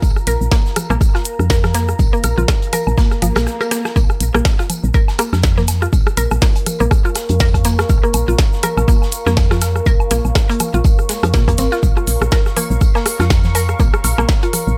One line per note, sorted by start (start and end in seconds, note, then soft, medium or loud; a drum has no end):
0.00 0.12 A#1 loud
0.00 3.95 A#4 medium
0.00 3.96 F5 medium
0.00 3.99 A#5 medium
0.00 kick loud
0.00 tambourine medium
0.00 shaker soft
0.16 cross-stick soft
0.16 shaker soft
0.27 0.36 A#1 medium
0.27 0.34 A#4 loud
0.27 closed hi-hat medium
0.27 tambourine medium
0.27 shaker medium
0.41 0.48 A#1 medium
0.41 shaker soft
0.51 0.54 A#3 loud
0.51 kick loud
0.51 cross-stick soft
0.51 snare loud
0.51 snare medium
0.51 tambourine medium
0.51 shaker soft
0.66 snare soft
0.66 shaker soft
0.76 cross-stick medium
0.76 closed hi-hat medium
0.76 tambourine medium
0.76 low conga medium
0.76 shaker medium
0.90 0.97 A#1 loud
0.90 0.93 A#3 loud
0.90 cowbell medium
0.90 low woodblock medium
0.90 shaker soft
1.01 kick loud
1.01 cross-stick soft
1.01 tambourine medium
1.01 shaker medium
1.14 1.18 F4 medium
1.14 snare soft
1.14 low woodblock medium
1.14 shaker soft
1.25 closed hi-hat medium
1.25 shaker medium
1.39 1.94 F2 loud
1.39 cross-stick soft
1.39 shaker soft
1.50 1.56 A#4 loud
1.50 kick loud
1.50 snare loud
1.50 snare medium
1.50 tambourine medium
1.50 shaker medium
1.64 cross-stick medium
1.64 snare soft
1.64 low conga medium
1.64 shaker soft
1.74 1.77 A#3 loud
1.74 snare soft
1.74 closed hi-hat medium
1.74 tambourine medium
1.74 shaker medium
1.88 cross-stick soft
1.88 shaker soft
1.99 2.09 A#1 loud
1.99 kick loud
1.99 tambourine medium
1.99 shaker soft
2.13 2.16 A#3 loud
2.13 shaker soft
2.24 2.33 A#1 medium
2.24 cross-stick soft
2.24 closed hi-hat medium
2.24 tambourine medium
2.24 cowbell medium
2.24 shaker medium
2.38 2.45 A#1 medium
2.38 2.41 F4 medium
2.38 low conga medium
2.38 shaker soft
2.48 kick loud
2.48 cross-stick medium
2.48 snare loud
2.48 tambourine medium
2.48 shaker medium
2.62 closed hi-hat soft
2.62 shaker soft
2.73 2.79 A#4 loud
2.73 cross-stick soft
2.73 closed hi-hat medium
2.73 tambourine medium
2.73 low conga medium
2.73 low woodblock medium
2.73 shaker loud
2.87 2.94 A#1 loud
2.87 low woodblock medium
2.87 shaker soft
2.98 3.00 A#3 loud
2.98 kick loud
2.98 snare loud
2.98 tambourine medium
2.98 swell medium
2.98 shaker medium
3.11 cross-stick soft
3.11 snare soft
3.11 shaker soft
3.22 3.32 G#1 medium
3.22 3.26 F3 loud
3.22 closed hi-hat medium
3.22 tambourine medium
3.22 low woodblock medium
3.22 shaker medium
3.36 3.47 A#1 medium
3.36 3.41 A#3 medium
3.36 cross-stick medium
3.36 snare loud
3.36 tambourine medium
3.36 shaker soft
3.46 cross-stick medium
3.46 snare soft
3.46 shaker medium
3.61 3.63 A#4 medium
3.61 cross-stick soft
3.61 cross-stick medium
3.61 tambourine medium
3.61 cowbell medium
3.61 shaker soft
3.71 3.78 A#3 loud
3.71 cross-stick medium
3.71 snare soft
3.71 closed hi-hat medium
3.71 tambourine medium
3.71 shaker medium
3.85 cross-stick medium
3.85 snare soft
3.85 low woodblock medium
3.85 shaker soft
3.96 4.05 A#1 loud
3.96 3.99 A#3 loud
3.96 14.78 A#4 medium
3.96 kick loud
3.96 tambourine medium
3.96 shaker medium
4.10 cross-stick soft
4.10 low woodblock soft
4.10 shaker soft
4.20 4.30 A#1 medium
4.20 closed hi-hat medium
4.20 tambourine medium
4.20 shaker medium
4.31 4.42 A#1 medium
4.31 4.38 A#3 loud
4.31 14.78 F5 medium
4.31 cross-stick medium
4.31 shaker soft
4.45 kick loud
4.45 snare loud
4.45 tambourine medium
4.45 cowbell medium
4.45 low woodblock medium
4.45 shaker medium
4.59 4.62 F4 medium
4.59 cross-stick soft
4.59 snare soft
4.59 shaker soft
4.70 14.78 C#6 medium
4.70 closed hi-hat medium
4.70 tambourine medium
4.70 low conga medium
4.70 low woodblock soft
4.70 shaker loud
4.84 4.91 A#1 loud
4.84 shaker soft
4.94 5.01 A#4 loud
4.94 kick loud
4.94 cross-stick soft
4.94 tambourine medium
4.94 shaker medium
5.08 snare soft
5.08 low woodblock medium
5.08 shaker soft
5.18 5.21 A#3 loud
5.18 cross-stick medium
5.18 closed hi-hat medium
5.18 tambourine medium
5.18 shaker medium
5.33 5.87 F2 loud
5.33 snare soft
5.33 cowbell medium
5.33 low woodblock soft
5.33 shaker soft
5.43 kick loud
5.43 cross-stick soft
5.43 snare medium
5.43 snare loud
5.43 tambourine medium
5.43 shaker medium
5.57 5.61 A#3 loud
5.57 snare medium
5.57 low conga medium
5.57 shaker soft
5.68 snare soft
5.68 closed hi-hat loud
5.68 tambourine medium
5.68 low woodblock medium
5.68 shaker loud
5.82 5.85 F4 medium
5.82 cross-stick soft
5.82 shaker soft
5.93 6.02 A#1 loud
5.93 kick loud
5.93 tambourine medium
5.93 low woodblock soft
5.93 shaker medium
6.07 cross-stick medium
6.07 shaker soft
6.17 6.27 A#1 medium
6.17 6.24 A#4 loud
6.17 closed hi-hat loud
6.17 tambourine medium
6.17 cowbell medium
6.17 shaker medium
6.31 6.38 A#1 medium
6.31 cross-stick soft
6.31 low woodblock medium
6.31 shaker soft
6.42 6.44 A#3 loud
6.42 kick loud
6.42 snare loud
6.42 tambourine medium
6.42 shaker medium
6.55 closed hi-hat soft
6.55 low woodblock soft
6.55 shaker soft
6.66 cross-stick soft
6.66 closed hi-hat medium
6.66 tambourine medium
6.66 low conga medium
6.66 shaker loud
6.80 6.88 A#1 loud
6.80 6.84 A#3 loud
6.80 shaker soft
6.91 kick loud
6.91 cross-stick medium
6.91 tambourine loud
6.91 low woodblock medium
6.91 shaker medium
7.05 7.08 F4 medium
7.05 cowbell medium
7.05 shaker soft
7.15 cross-stick soft
7.15 snare medium
7.15 closed hi-hat loud
7.15 tambourine medium
7.15 low woodblock soft
7.15 shaker medium
7.29 7.84 F2 loud
7.29 closed hi-hat soft
7.29 shaker soft
7.40 7.47 A#4 loud
7.40 kick loud
7.40 snare loud
7.40 tambourine medium
7.40 shaker medium
7.54 kick medium
7.54 cross-stick soft
7.54 closed hi-hat soft
7.54 low woodblock medium
7.54 shaker soft
7.64 7.67 A#3 loud
7.64 snare soft
7.64 closed hi-hat medium
7.64 tambourine medium
7.64 shaker medium
7.79 cross-stick medium
7.79 snare soft
7.79 low woodblock soft
7.79 shaker soft
7.89 7.99 A#1 loud
7.89 kick loud
7.89 tambourine medium
7.89 cowbell medium
7.89 shaker medium
8.03 8.07 A#3 loud
8.03 cross-stick soft
8.03 shaker soft
8.13 8.23 A#1 medium
8.13 closed hi-hat loud
8.13 tambourine medium
8.13 low woodblock medium
8.13 shaker loud
8.28 8.35 A#1 medium
8.28 8.31 F4 medium
8.28 shaker soft
8.39 kick loud
8.39 cross-stick soft
8.39 snare loud
8.39 tambourine medium
8.39 low woodblock soft
8.39 shaker medium
8.53 snare soft
8.53 shaker soft
8.63 8.70 A#4 loud
8.63 cross-stick medium
8.63 closed hi-hat loud
8.63 tambourine medium
8.63 low conga medium
8.63 shaker loud
8.77 8.84 A#1 loud
8.77 cowbell medium
8.77 low woodblock medium
8.77 shaker soft
8.88 8.90 A#3 loud
8.88 kick loud
8.88 cross-stick soft
8.88 tambourine medium
8.88 shaker medium
9.02 snare soft
9.02 low woodblock soft
9.02 shaker soft
9.12 closed hi-hat loud
9.12 tambourine medium
9.12 shaker loud
9.26 9.81 F2 loud
9.26 9.30 A#3 loud
9.26 cross-stick soft
9.26 snare soft
9.26 shaker soft
9.37 kick loud
9.37 snare medium
9.37 snare loud
9.37 tambourine medium
9.37 low woodblock medium
9.37 shaker soft
9.51 9.54 F4 medium
9.51 cross-stick medium
9.51 snare soft
9.51 low conga medium
9.51 shaker soft
9.62 snare soft
9.62 closed hi-hat loud
9.62 tambourine medium
9.62 cowbell medium
9.62 low woodblock soft
9.62 shaker loud
9.76 cross-stick soft
9.76 shaker soft
9.86 9.96 A#1 loud
9.86 9.93 A#4 loud
9.86 kick loud
9.86 tambourine medium
9.86 shaker medium
10.00 low woodblock medium
10.00 shaker soft
10.11 10.20 A#1 medium
10.11 10.13 A#3 loud
10.11 cross-stick soft
10.11 closed hi-hat loud
10.11 tambourine medium
10.11 shaker medium
10.25 10.32 A#1 medium
10.25 low woodblock soft
10.25 shaker soft
10.35 kick loud
10.35 cross-stick medium
10.35 snare loud
10.35 tambourine medium
10.35 shaker medium
10.49 10.53 A#3 loud
10.49 closed hi-hat soft
10.49 cowbell medium
10.49 shaker soft
10.60 cross-stick soft
10.60 closed hi-hat loud
10.60 tambourine medium
10.60 low conga medium
10.60 low woodblock medium
10.60 shaker medium
10.74 10.81 A#1 loud
10.74 10.77 F4 medium
10.74 shaker soft
10.84 kick loud
10.84 tambourine loud
10.84 low woodblock soft
10.84 shaker medium
10.99 cross-stick soft
10.99 shaker soft
11.09 11.12 G#3 medium
11.09 snare medium
11.09 closed hi-hat loud
11.09 tambourine medium
11.09 shaker loud
11.23 11.35 F2 loud
11.23 11.26 F3 medium
11.23 cross-stick medium
11.23 closed hi-hat soft
11.23 low woodblock medium
11.23 shaker soft
11.33 11.43 A#2 medium
11.33 11.40 A#3 loud
11.33 kick loud
11.33 snare medium
11.33 snare loud
11.33 tambourine medium
11.33 cowbell medium
11.33 shaker medium
11.48 11.55 F2 medium
11.48 11.51 A#3 loud
11.48 kick medium
11.48 cross-stick soft
11.48 closed hi-hat soft
11.48 low woodblock soft
11.48 shaker soft
11.58 11.68 G#1 medium
11.58 11.65 C4 medium
11.58 snare soft
11.58 closed hi-hat loud
11.58 tambourine medium
11.58 shaker medium
11.72 11.75 F4 loud
11.72 snare soft
11.72 shaker soft
11.83 11.92 A#1 loud
11.83 kick loud
11.83 tambourine medium
11.83 shaker medium
11.97 12.00 F4 medium
11.97 cross-stick soft
11.97 low woodblock soft
11.97 shaker soft
12.07 12.17 A#1 medium
12.07 open hi-hat medium
12.07 tambourine medium
12.07 shaker loud
12.21 12.28 A#1 medium
12.21 cross-stick medium
12.21 shaker soft
12.31 12.38 A#4 loud
12.31 kick loud
12.31 snare medium
12.31 snare loud
12.31 tambourine medium
12.31 cowbell medium
12.31 low woodblock medium
12.31 shaker medium
12.46 cross-stick soft
12.46 snare soft
12.46 shaker soft
12.56 12.59 A#3 loud
12.56 open hi-hat medium
12.56 tambourine medium
12.56 low conga medium
12.56 low woodblock soft
12.56 shaker medium
12.70 12.78 A#1 loud
12.70 shaker soft
12.81 kick loud
12.81 cross-stick soft
12.81 tambourine medium
12.81 shaker medium
12.95 12.98 A#3 loud
12.95 snare soft
12.95 low woodblock medium
12.95 shaker soft
13.06 cross-stick medium
13.06 open hi-hat medium
13.06 tambourine medium
13.06 shaker loud
13.20 13.74 F2 loud
13.20 13.23 F4 medium
13.20 snare soft
13.20 cowbell medium
13.20 low woodblock soft
13.20 shaker soft
13.30 kick loud
13.30 cross-stick soft
13.30 snare medium
13.30 snare loud
13.30 tambourine medium
13.30 shaker medium
13.44 snare medium
13.44 low conga medium
13.44 shaker soft
13.55 13.61 A#4 loud
13.55 snare medium
13.55 open hi-hat medium
13.55 tambourine medium
13.55 low woodblock medium
13.55 shaker loud
13.69 cross-stick soft
13.69 shaker soft
13.79 13.89 A#1 loud
13.79 13.82 A#3 loud
13.79 kick loud
13.79 tambourine medium
13.79 low woodblock soft
13.79 shaker soft
13.93 cross-stick medium
13.93 shaker soft
14.04 14.14 A#1 medium
14.04 open hi-hat medium
14.04 tambourine medium
14.04 cowbell medium
14.04 shaker medium
14.18 14.25 A#1 medium
14.18 14.21 A#3 loud
14.18 cross-stick soft
14.18 low woodblock medium
14.18 shaker soft
14.29 kick loud
14.29 snare medium
14.29 snare loud
14.29 tambourine medium
14.29 shaker soft
14.42 14.46 F4 medium
14.42 closed hi-hat soft
14.42 low woodblock soft
14.42 shaker soft
14.53 cross-stick soft
14.53 open hi-hat medium
14.53 tambourine medium
14.53 low conga medium
14.53 shaker loud
14.67 14.74 A#1 loud
14.67 shaker soft